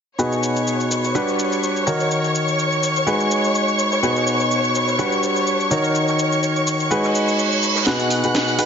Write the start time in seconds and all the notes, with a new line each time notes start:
0.19 B2 D#4 F#4 G#4 B4 C#5 C#6, shaker
0.32 snare, shaker
0.43 shaker
0.56 shaker
0.67 shaker
0.80 shaker
0.91 snare, shaker
1.04 snare, shaker
1.15 G3 D4 F#4 G4 B4, shaker
1.28 shaker
1.39 shaker
1.52 shaker
1.63 shaker
1.76 shaker
1.87 D#3 D#4 F#4 A#4 C#5, shaker
2.00 shaker
2.11 shaker
2.24 snare, shaker
2.35 shaker
2.48 shaker
2.59 shaker
2.72 shaker
2.83 shaker
2.96 shaker
3.07 G#3 D#4 F#4 G#4 B4, shaker
3.19 snare, shaker
3.31 shaker
3.44 shaker
3.55 shaker
3.68 shaker
3.79 shaker
3.92 snare, shaker
4.03 B2 D#4 F#4 G#4 B4, shaker
4.16 snare, shaker
4.27 shaker
4.40 shaker
4.51 shaker
4.64 shaker
4.75 snare, shaker
4.87 snare, shaker
4.99 G3 D4 F#4 G4 B4, shaker
5.12 shaker
5.23 shaker
5.36 shaker
5.47 shaker
5.60 shaker
5.71 D#3 D#4 F#4 A#4 C#5, shaker
5.84 shaker
5.95 shaker
6.08 snare, shaker
6.19 shaker
6.32 shaker
6.43 shaker
6.56 shaker
6.66 shaker
6.80 shaker
6.91 G#3 D#4 F#4 G#4 B4, reverse cymbal, shaker
7.04 snare, shaker
7.15 shaker
7.28 shaker
7.38 shaker
7.52 shaker
7.63 shaker
7.75 snare, shaker
7.87 B2 D#4 F#4 G#4 B4 F#5 F#6, snare, closed hi-hat, tambourine, shaker
8.00 closed hi-hat, tambourine, shaker
8.10 open hi-hat, tambourine, shaker
8.23 B2 D#4 F#4 G#4 B4, closed hi-hat, tambourine, shaker
8.35 snare, closed hi-hat, tambourine, shaker
8.48 tambourine, shaker
8.59 D#4 F#4 G#4 B4, open hi-hat, tambourine, shaker